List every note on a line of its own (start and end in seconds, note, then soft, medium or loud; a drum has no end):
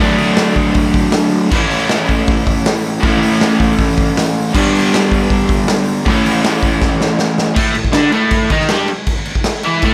0.00 1.49 D3 medium
0.00 1.50 F#3 medium
0.00 1.54 A3 loud
0.00 1.51 D4 loud
0.18 open hi-hat medium
0.37 snare loud
0.37 open hi-hat medium
0.56 kick medium
0.56 open hi-hat medium
0.74 kick loud
0.74 open hi-hat medium
0.93 kick loud
0.93 open hi-hat medium
1.12 snare loud
1.12 open hi-hat medium
1.32 open hi-hat medium
1.51 2.99 A2 medium
1.51 3.01 E3 medium
1.51 3.02 A3 medium
1.51 kick loud
1.51 crash loud
1.55 3.03 C#4 loud
1.55 3.05 E4 medium
1.71 open hi-hat medium
1.89 snare loud
1.89 open hi-hat medium
2.09 kick medium
2.09 open hi-hat medium
2.27 kick loud
2.27 open hi-hat medium
2.47 kick medium
2.47 open hi-hat medium
2.66 snare loud
2.66 open hi-hat medium
2.86 open hi-hat medium
3.00 4.52 A2 medium
3.00 4.53 E3 medium
3.00 4.53 A3 medium
3.00 4.54 C#4 medium
3.00 kick loud
3.00 open hi-hat medium
3.06 4.55 E4 medium
3.23 open hi-hat medium
3.41 snare loud
3.41 open hi-hat medium
3.60 kick medium
3.60 open hi-hat medium
3.79 kick loud
3.79 open hi-hat medium
3.98 kick loud
3.98 open hi-hat medium
4.17 snare loud
4.17 open hi-hat medium
4.37 open hi-hat medium
4.53 6.04 G2 medium
4.53 6.05 D3 medium
4.53 6.06 G3 loud
4.53 kick loud
4.53 crash loud
4.57 6.06 B3 medium
4.57 6.06 D4 loud
4.75 open hi-hat medium
4.94 snare loud
4.94 open hi-hat loud
5.12 kick medium
5.12 open hi-hat medium
5.30 kick loud
5.30 open hi-hat medium
5.49 kick loud
5.49 open hi-hat medium
5.68 snare loud
5.68 open hi-hat medium
5.88 open hi-hat medium
6.05 7.54 A2 medium
6.05 7.54 E3 medium
6.05 7.55 A3 loud
6.05 kick loud
6.05 open hi-hat medium
6.10 7.56 C#4 medium
6.10 7.58 E4 medium
6.26 open hi-hat medium
6.45 snare loud
6.45 open hi-hat medium
6.63 kick loud
6.63 open hi-hat medium
6.81 kick loud
6.81 snare medium
7.01 snare medium
7.19 snare loud
7.38 snare medium
7.55 7.74 A2 medium
7.55 7.75 A3 medium
7.55 kick loud
7.55 crash loud
7.55 crash medium
7.75 7.91 A2 medium
7.75 crash medium
7.84 kick medium
7.92 8.11 D3 medium
7.92 8.13 D4 loud
7.92 snare loud
7.92 crash medium
8.12 8.50 A2 medium
8.12 8.51 A3 loud
8.12 crash medium
8.31 kick loud
8.31 crash medium
8.50 8.70 D#3 medium
8.50 8.70 D#4 medium
8.50 kick medium
8.50 crash medium
8.61 snare soft
8.69 8.89 G2 loud
8.69 8.90 G3 loud
8.69 snare loud
8.69 crash medium
8.88 crash medium
9.07 kick loud
9.07 crash medium
9.26 crash medium
9.35 kick medium
9.44 snare loud
9.44 crash medium
9.63 9.83 E3 loud
9.63 9.83 E4 loud
9.63 crash medium
9.82 9.94 A2 medium
9.82 9.94 A3 loud
9.82 kick loud
9.82 crash medium